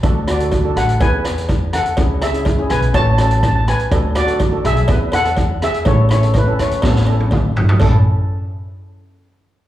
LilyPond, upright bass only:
\new Staff \with { instrumentName = "Upright bass" } { \clef bass \time 4/4 \key a \major \tempo 4 = 124 d,4. a,,8 e,2 | cis,4. b,,8 a,,2 | d,4. b,,8 e,2 | a,,4. e,8 a,,2 |
a,,8 r2. r8 | }